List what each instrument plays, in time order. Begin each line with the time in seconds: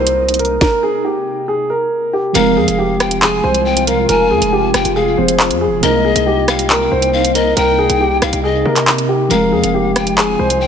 Already playing: 808-style bass C2, ambient pad C3 A#3 D#4, grand piano C5
0.07 closed hi-hat
0.29 closed hi-hat
0.34 closed hi-hat
0.39 grand piano A#4, closed hi-hat
0.45 closed hi-hat
0.61 grand piano A#4, kick, snare
0.83 grand piano G#4
1.05 grand piano G4
1.48 grand piano G#4
1.70 grand piano A#4
2.13 grand piano G4
2.33 808-style bass F1, ambient pad C3 G#3 F4, synth keys F3 C4, grand piano A#4, pan flute F5, closed hi-hat
2.38 synth keys G#3
2.57 808-style bass F2, grand piano G#4
2.68 808-style bass F1, closed hi-hat
2.79 grand piano G4
3.00 pan flute G5, cross-stick, closed hi-hat
3.11 closed hi-hat
3.21 grand piano G#4, pan flute G#5, clap
3.44 808-style bass C2, grand piano C5
3.54 closed hi-hat
3.65 pan flute G5
3.77 closed hi-hat
3.87 grand piano A#4, pan flute F5, closed hi-hat
4.09 808-style bass F1, grand piano A#4, pan flute G#5, closed hi-hat
4.31 808-style bass F2, grand piano G#4
4.42 808-style bass F1, closed hi-hat
4.53 grand piano G4
4.74 808-style bass F1, pan flute G5, cross-stick, closed hi-hat
4.85 808-style bass F1, closed hi-hat
4.96 grand piano G#4, pan flute F5
5.16 808-style bass F1, synth keys F3 C4 G#4, grand piano C5
5.28 closed hi-hat
5.39 clap
5.50 808-style bass F2, closed hi-hat
5.61 grand piano G#4
5.67 808-style bass F1
5.80 808-style bass C2, synth keys C3 A#3, ambient pad C3 A#3 D#4, grand piano A#4, pan flute D#5, closed hi-hat
5.86 synth keys D#4
6.05 grand piano G#4
6.16 808-style bass C2, closed hi-hat
6.26 grand piano G4
6.48 pan flute F5, cross-stick, closed hi-hat
6.59 closed hi-hat
6.70 grand piano A#4, pan flute G5, clap
6.92 808-style bass C2, grand piano C5
7.02 closed hi-hat
7.13 pan flute F5
7.25 closed hi-hat
7.35 grand piano A#4, pan flute D#5, closed hi-hat
7.56 808-style bass C2, grand piano A#4, pan flute G5, closed hi-hat
7.79 808-style bass C#2, grand piano G#4
7.89 808-style bass C2, closed hi-hat
8.00 grand piano G4
8.22 808-style bass C2, pan flute F5, cross-stick, closed hi-hat
8.33 808-style bass C2, closed hi-hat
8.44 grand piano G#4, pan flute D#5
8.65 808-style bass C3, grand piano A#4
8.76 clap, closed hi-hat
8.87 clap
8.98 closed hi-hat
9.09 grand piano G4
9.28 808-style bass F1, synth keys F3 C4, ambient pad G#3 F4, grand piano A#4, pan flute F5, closed hi-hat
9.34 synth keys G#3
9.52 808-style bass F2, grand piano G#4
9.63 808-style bass F1, closed hi-hat
9.74 grand piano G4
9.96 pan flute G5, cross-stick, closed hi-hat
10.07 closed hi-hat
10.17 grand piano G#4, pan flute G#5, clap
10.39 808-style bass C2, grand piano C5
10.50 closed hi-hat
10.61 pan flute G5